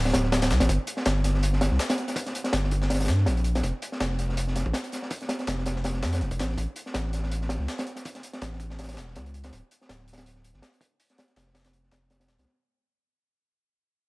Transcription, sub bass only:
0.00 0.12 D1 medium
0.14 0.52 D1 loud
0.51 0.60 C2 medium
0.61 0.68 A1 medium
0.69 0.78 G1 medium
1.06 1.69 G1 loud
1.71 1.79 C2 medium
2.53 3.10 G1 medium
3.08 3.28 G2 medium
3.27 3.62 A#1 medium
3.63 3.72 F1 medium
4.00 4.64 F1 medium
4.66 4.73 A1 medium
5.48 6.04 F1 medium
6.03 6.23 F2 medium
6.21 6.30 F1 loud
6.31 6.41 F1 loud
6.40 6.56 A1 medium
6.58 6.67 A1 medium
6.95 7.58 A1 medium
7.60 7.67 C#2 medium
8.42 8.99 A1 medium
8.97 9.17 E1 medium
9.16 9.51 C#2 medium
9.53 9.62 D1 medium
9.89 10.53 D1 medium
10.55 10.62 G1 medium
11.36 11.90 F1 medium
11.92 12.30 F1 loud
12.29 12.38 D#1 medium
12.38 12.46 C2 medium

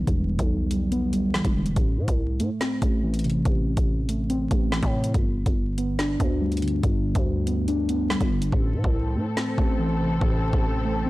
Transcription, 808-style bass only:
0.07 0.38 E1 loud
0.39 1.41 B1 loud
1.45 1.75 E1 loud
1.76 1.99 A1 loud
1.97 2.07 A2 loud
2.08 2.41 C2 loud
2.40 2.50 A2 medium
2.82 3.43 A1 loud
3.45 3.76 A1 loud
3.77 4.48 A1 loud
4.51 4.81 A1 loud
4.83 5.13 A2 loud
5.14 5.45 G1 loud
5.46 6.17 G1 loud
6.20 6.81 D2 loud
6.83 7.14 G1 loud
7.15 8.17 D2 loud
8.21 8.51 G1 loud
8.52 8.75 A1 loud
8.74 8.84 A2 medium
8.84 9.17 C2 loud
9.16 9.26 A2 loud
9.58 10.19 A1 loud
10.21 10.52 A1 loud
10.53 11.10 A1 loud

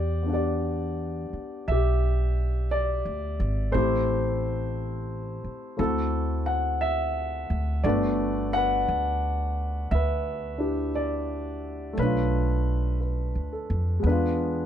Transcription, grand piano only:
0.00 0.31 G4 medium
0.00 0.32 D5 medium
0.22 3.70 B3 soft
0.22 3.72 D4 soft
0.29 1.70 G4 soft
0.29 3.74 F#5 soft
0.34 2.34 D5 medium
1.68 3.71 G4 medium
1.68 2.66 E5 medium
2.71 3.70 D5 medium
3.72 5.75 A3 medium
3.72 5.76 C4 soft
3.72 5.77 E4 medium
3.72 5.84 C5 medium
3.76 5.80 G4 medium
5.77 7.83 A3 soft
5.77 7.84 C4 soft
5.77 7.84 E4 soft
5.77 5.81 F#4 soft
5.77 6.49 A4 medium
5.82 7.82 F#4 medium
6.46 6.82 F#5 medium
6.81 7.80 E5 medium
7.84 11.92 A3 medium
7.84 11.97 B3 soft
7.84 10.57 D4 soft
7.84 11.98 F#4 medium
7.84 8.48 D5 medium
7.88 8.56 B4 medium
8.53 9.93 B4 medium
8.53 9.87 F#5 loud
9.91 11.95 B4 medium
9.91 10.90 E5 medium
10.58 11.97 D4 soft
10.58 11.98 E4 soft
10.58 11.98 G4 soft
10.95 11.94 D5 medium
11.93 14.02 A3 soft
11.97 12.99 B4 medium
11.97 14.05 C#5 soft
12.02 14.05 D4 soft
12.02 14.08 F4 medium
13.01 13.83 B4 soft
13.53 14.26 A4 soft
13.99 14.66 G#3 medium
13.99 14.66 B3 medium
14.06 14.66 D4 soft
14.06 14.66 G#4 soft
14.06 14.66 B4 medium
14.11 14.66 F4 medium

